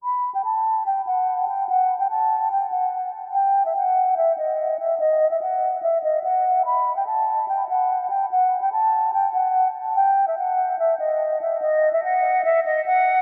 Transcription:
0, 0, Header, 1, 2, 480
1, 0, Start_track
1, 0, Tempo, 413793
1, 39, Time_signature, 4, 2, 24, 8
1, 15334, End_track
2, 0, Start_track
2, 0, Title_t, "Flute"
2, 0, Program_c, 0, 73
2, 41, Note_on_c, 0, 83, 95
2, 379, Note_off_c, 0, 83, 0
2, 401, Note_on_c, 0, 79, 80
2, 491, Note_off_c, 0, 79, 0
2, 517, Note_on_c, 0, 81, 81
2, 969, Note_off_c, 0, 81, 0
2, 1000, Note_on_c, 0, 79, 85
2, 1182, Note_off_c, 0, 79, 0
2, 1239, Note_on_c, 0, 78, 81
2, 1690, Note_off_c, 0, 78, 0
2, 1718, Note_on_c, 0, 79, 74
2, 1900, Note_off_c, 0, 79, 0
2, 1964, Note_on_c, 0, 78, 103
2, 2300, Note_off_c, 0, 78, 0
2, 2316, Note_on_c, 0, 79, 84
2, 2408, Note_off_c, 0, 79, 0
2, 2440, Note_on_c, 0, 81, 95
2, 2891, Note_off_c, 0, 81, 0
2, 2915, Note_on_c, 0, 79, 93
2, 3098, Note_off_c, 0, 79, 0
2, 3157, Note_on_c, 0, 78, 76
2, 3610, Note_off_c, 0, 78, 0
2, 3877, Note_on_c, 0, 79, 106
2, 4216, Note_off_c, 0, 79, 0
2, 4243, Note_on_c, 0, 76, 65
2, 4332, Note_off_c, 0, 76, 0
2, 4360, Note_on_c, 0, 78, 92
2, 4811, Note_off_c, 0, 78, 0
2, 4836, Note_on_c, 0, 76, 91
2, 5019, Note_off_c, 0, 76, 0
2, 5078, Note_on_c, 0, 75, 73
2, 5530, Note_off_c, 0, 75, 0
2, 5561, Note_on_c, 0, 76, 75
2, 5742, Note_off_c, 0, 76, 0
2, 5798, Note_on_c, 0, 75, 91
2, 6137, Note_off_c, 0, 75, 0
2, 6160, Note_on_c, 0, 76, 73
2, 6251, Note_off_c, 0, 76, 0
2, 6282, Note_on_c, 0, 78, 80
2, 6732, Note_off_c, 0, 78, 0
2, 6758, Note_on_c, 0, 76, 87
2, 6940, Note_off_c, 0, 76, 0
2, 7002, Note_on_c, 0, 75, 78
2, 7183, Note_off_c, 0, 75, 0
2, 7237, Note_on_c, 0, 78, 88
2, 7689, Note_off_c, 0, 78, 0
2, 7718, Note_on_c, 0, 83, 96
2, 8057, Note_off_c, 0, 83, 0
2, 8078, Note_on_c, 0, 79, 76
2, 8170, Note_off_c, 0, 79, 0
2, 8196, Note_on_c, 0, 81, 84
2, 8649, Note_off_c, 0, 81, 0
2, 8679, Note_on_c, 0, 79, 84
2, 8861, Note_off_c, 0, 79, 0
2, 8919, Note_on_c, 0, 78, 80
2, 9370, Note_off_c, 0, 78, 0
2, 9398, Note_on_c, 0, 79, 75
2, 9580, Note_off_c, 0, 79, 0
2, 9643, Note_on_c, 0, 78, 103
2, 9980, Note_off_c, 0, 78, 0
2, 9996, Note_on_c, 0, 79, 84
2, 10088, Note_off_c, 0, 79, 0
2, 10119, Note_on_c, 0, 81, 95
2, 10570, Note_off_c, 0, 81, 0
2, 10595, Note_on_c, 0, 79, 91
2, 10778, Note_off_c, 0, 79, 0
2, 10834, Note_on_c, 0, 78, 77
2, 11231, Note_off_c, 0, 78, 0
2, 11556, Note_on_c, 0, 79, 108
2, 11896, Note_off_c, 0, 79, 0
2, 11923, Note_on_c, 0, 76, 66
2, 12012, Note_off_c, 0, 76, 0
2, 12040, Note_on_c, 0, 78, 92
2, 12491, Note_off_c, 0, 78, 0
2, 12516, Note_on_c, 0, 76, 93
2, 12699, Note_off_c, 0, 76, 0
2, 12755, Note_on_c, 0, 75, 75
2, 13208, Note_off_c, 0, 75, 0
2, 13240, Note_on_c, 0, 76, 76
2, 13422, Note_off_c, 0, 76, 0
2, 13477, Note_on_c, 0, 75, 97
2, 13816, Note_off_c, 0, 75, 0
2, 13840, Note_on_c, 0, 76, 73
2, 13930, Note_off_c, 0, 76, 0
2, 13962, Note_on_c, 0, 78, 80
2, 14412, Note_off_c, 0, 78, 0
2, 14436, Note_on_c, 0, 76, 93
2, 14619, Note_off_c, 0, 76, 0
2, 14683, Note_on_c, 0, 75, 78
2, 14863, Note_off_c, 0, 75, 0
2, 14917, Note_on_c, 0, 78, 92
2, 15334, Note_off_c, 0, 78, 0
2, 15334, End_track
0, 0, End_of_file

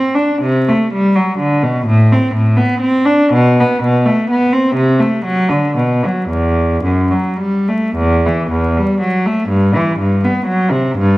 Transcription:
0, 0, Header, 1, 2, 480
1, 0, Start_track
1, 0, Key_signature, 1, "minor"
1, 0, Tempo, 509338
1, 381, Time_signature, 3, 2, 24, 8
1, 855, Tempo, 473186
1, 2775, Tempo, 508044
1, 3735, Tempo, 484262
1, 5175, Tempo, 519931
1, 6135, Tempo, 547445
1, 8055, Tempo, 491803
1, 9975, Tempo, 521739
1, 10629, End_track
2, 0, Start_track
2, 0, Title_t, "Cello"
2, 0, Program_c, 0, 42
2, 0, Note_on_c, 0, 60, 65
2, 124, Note_off_c, 0, 60, 0
2, 140, Note_on_c, 0, 62, 60
2, 384, Note_off_c, 0, 62, 0
2, 394, Note_on_c, 0, 48, 83
2, 626, Note_off_c, 0, 48, 0
2, 646, Note_on_c, 0, 57, 67
2, 866, Note_off_c, 0, 57, 0
2, 881, Note_on_c, 0, 55, 76
2, 1103, Note_off_c, 0, 55, 0
2, 1106, Note_on_c, 0, 54, 65
2, 1336, Note_off_c, 0, 54, 0
2, 1336, Note_on_c, 0, 50, 66
2, 1566, Note_off_c, 0, 50, 0
2, 1583, Note_on_c, 0, 47, 67
2, 1816, Note_off_c, 0, 47, 0
2, 1825, Note_on_c, 0, 45, 84
2, 2054, Note_off_c, 0, 45, 0
2, 2088, Note_on_c, 0, 60, 65
2, 2309, Note_off_c, 0, 60, 0
2, 2313, Note_on_c, 0, 45, 72
2, 2538, Note_off_c, 0, 45, 0
2, 2542, Note_on_c, 0, 59, 67
2, 2778, Note_on_c, 0, 60, 76
2, 2780, Note_off_c, 0, 59, 0
2, 3007, Note_off_c, 0, 60, 0
2, 3016, Note_on_c, 0, 62, 74
2, 3261, Note_off_c, 0, 62, 0
2, 3270, Note_on_c, 0, 47, 94
2, 3504, Note_off_c, 0, 47, 0
2, 3532, Note_on_c, 0, 59, 74
2, 3743, Note_on_c, 0, 47, 79
2, 3750, Note_off_c, 0, 59, 0
2, 3972, Note_on_c, 0, 57, 70
2, 3975, Note_off_c, 0, 47, 0
2, 4214, Note_off_c, 0, 57, 0
2, 4216, Note_on_c, 0, 59, 73
2, 4441, Note_on_c, 0, 60, 70
2, 4449, Note_off_c, 0, 59, 0
2, 4661, Note_on_c, 0, 48, 83
2, 4684, Note_off_c, 0, 60, 0
2, 4904, Note_on_c, 0, 57, 67
2, 4909, Note_off_c, 0, 48, 0
2, 5159, Note_on_c, 0, 54, 80
2, 5163, Note_off_c, 0, 57, 0
2, 5381, Note_on_c, 0, 50, 66
2, 5399, Note_off_c, 0, 54, 0
2, 5634, Note_off_c, 0, 50, 0
2, 5634, Note_on_c, 0, 47, 67
2, 5877, Note_off_c, 0, 47, 0
2, 5898, Note_on_c, 0, 54, 57
2, 6120, Note_on_c, 0, 40, 73
2, 6140, Note_off_c, 0, 54, 0
2, 6597, Note_off_c, 0, 40, 0
2, 6600, Note_on_c, 0, 42, 60
2, 6838, Note_on_c, 0, 54, 51
2, 6842, Note_off_c, 0, 42, 0
2, 7084, Note_off_c, 0, 54, 0
2, 7087, Note_on_c, 0, 55, 54
2, 7332, Note_off_c, 0, 55, 0
2, 7338, Note_on_c, 0, 57, 54
2, 7582, Note_on_c, 0, 40, 83
2, 7593, Note_off_c, 0, 57, 0
2, 7821, Note_off_c, 0, 40, 0
2, 7846, Note_on_c, 0, 52, 69
2, 8058, Note_on_c, 0, 40, 71
2, 8063, Note_off_c, 0, 52, 0
2, 8298, Note_off_c, 0, 40, 0
2, 8324, Note_on_c, 0, 55, 67
2, 8548, Note_on_c, 0, 54, 63
2, 8557, Note_off_c, 0, 55, 0
2, 8783, Note_off_c, 0, 54, 0
2, 8799, Note_on_c, 0, 57, 66
2, 9019, Note_on_c, 0, 43, 82
2, 9030, Note_off_c, 0, 57, 0
2, 9252, Note_off_c, 0, 43, 0
2, 9275, Note_on_c, 0, 52, 70
2, 9502, Note_off_c, 0, 52, 0
2, 9510, Note_on_c, 0, 43, 69
2, 9736, Note_off_c, 0, 43, 0
2, 9758, Note_on_c, 0, 59, 63
2, 9969, Note_on_c, 0, 54, 73
2, 9987, Note_off_c, 0, 59, 0
2, 10200, Note_on_c, 0, 48, 68
2, 10203, Note_off_c, 0, 54, 0
2, 10444, Note_on_c, 0, 43, 92
2, 10449, Note_off_c, 0, 48, 0
2, 10629, Note_off_c, 0, 43, 0
2, 10629, End_track
0, 0, End_of_file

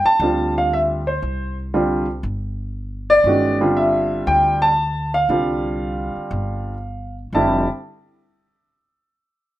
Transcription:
0, 0, Header, 1, 4, 480
1, 0, Start_track
1, 0, Key_signature, -1, "major"
1, 0, Tempo, 508906
1, 1157, Time_signature, 4, 2, 24, 8
1, 9046, End_track
2, 0, Start_track
2, 0, Title_t, "Grand piano"
2, 0, Program_c, 0, 0
2, 52, Note_on_c, 0, 81, 98
2, 201, Note_on_c, 0, 50, 56
2, 207, Note_on_c, 0, 55, 49
2, 212, Note_on_c, 0, 65, 60
2, 214, Note_on_c, 0, 60, 50
2, 496, Note_off_c, 0, 81, 0
2, 546, Note_on_c, 0, 77, 82
2, 678, Note_off_c, 0, 77, 0
2, 692, Note_on_c, 0, 76, 84
2, 764, Note_off_c, 0, 76, 0
2, 942, Note_off_c, 0, 50, 0
2, 944, Note_off_c, 0, 55, 0
2, 947, Note_off_c, 0, 65, 0
2, 948, Note_off_c, 0, 60, 0
2, 1010, Note_on_c, 0, 72, 75
2, 1454, Note_off_c, 0, 72, 0
2, 1640, Note_on_c, 0, 50, 60
2, 1640, Note_on_c, 0, 65, 66
2, 1641, Note_on_c, 0, 55, 57
2, 1645, Note_on_c, 0, 60, 58
2, 1934, Note_off_c, 0, 50, 0
2, 1934, Note_off_c, 0, 65, 0
2, 1935, Note_off_c, 0, 55, 0
2, 1937, Note_off_c, 0, 60, 0
2, 2923, Note_on_c, 0, 74, 108
2, 3076, Note_on_c, 0, 61, 52
2, 3081, Note_on_c, 0, 56, 53
2, 3082, Note_on_c, 0, 51, 55
2, 3085, Note_on_c, 0, 66, 64
2, 3371, Note_off_c, 0, 74, 0
2, 3372, Note_off_c, 0, 61, 0
2, 3374, Note_off_c, 0, 56, 0
2, 3375, Note_off_c, 0, 51, 0
2, 3377, Note_off_c, 0, 66, 0
2, 3403, Note_on_c, 0, 55, 58
2, 3405, Note_on_c, 0, 50, 65
2, 3405, Note_on_c, 0, 60, 59
2, 3408, Note_on_c, 0, 65, 69
2, 3552, Note_on_c, 0, 76, 78
2, 4001, Note_off_c, 0, 76, 0
2, 4029, Note_on_c, 0, 79, 91
2, 4356, Note_on_c, 0, 81, 97
2, 4372, Note_off_c, 0, 79, 0
2, 4426, Note_off_c, 0, 55, 0
2, 4427, Note_off_c, 0, 50, 0
2, 4427, Note_off_c, 0, 60, 0
2, 4428, Note_off_c, 0, 65, 0
2, 4808, Note_off_c, 0, 81, 0
2, 4850, Note_on_c, 0, 77, 93
2, 4995, Note_on_c, 0, 50, 56
2, 4998, Note_on_c, 0, 65, 63
2, 4999, Note_on_c, 0, 55, 55
2, 5000, Note_on_c, 0, 60, 49
2, 6347, Note_off_c, 0, 50, 0
2, 6348, Note_off_c, 0, 55, 0
2, 6348, Note_off_c, 0, 65, 0
2, 6349, Note_off_c, 0, 60, 0
2, 6732, Note_off_c, 0, 77, 0
2, 6925, Note_on_c, 0, 50, 65
2, 6929, Note_on_c, 0, 81, 76
2, 6935, Note_on_c, 0, 55, 58
2, 6935, Note_on_c, 0, 64, 67
2, 6938, Note_on_c, 0, 60, 57
2, 7218, Note_off_c, 0, 50, 0
2, 7223, Note_off_c, 0, 55, 0
2, 7223, Note_off_c, 0, 64, 0
2, 7224, Note_off_c, 0, 60, 0
2, 7230, Note_off_c, 0, 81, 0
2, 9046, End_track
3, 0, Start_track
3, 0, Title_t, "Upright bass"
3, 0, Program_c, 1, 32
3, 184, Note_on_c, 1, 38, 88
3, 1113, Note_off_c, 1, 38, 0
3, 1154, Note_on_c, 1, 36, 75
3, 2078, Note_off_c, 1, 36, 0
3, 2105, Note_on_c, 1, 31, 82
3, 3034, Note_off_c, 1, 31, 0
3, 3055, Note_on_c, 1, 31, 75
3, 3989, Note_off_c, 1, 31, 0
3, 4026, Note_on_c, 1, 38, 86
3, 4955, Note_off_c, 1, 38, 0
3, 4987, Note_on_c, 1, 36, 76
3, 5763, Note_off_c, 1, 36, 0
3, 5948, Note_on_c, 1, 31, 80
3, 6877, Note_off_c, 1, 31, 0
3, 6909, Note_on_c, 1, 29, 78
3, 7219, Note_off_c, 1, 29, 0
3, 9046, End_track
4, 0, Start_track
4, 0, Title_t, "Muted upright bass strokes"
4, 41, Note_on_c, 9, 29, 37
4, 135, Note_off_c, 9, 29, 0
4, 5808, Note_on_c, 9, 29, 34
4, 5902, Note_off_c, 9, 29, 0
4, 9046, End_track
0, 0, End_of_file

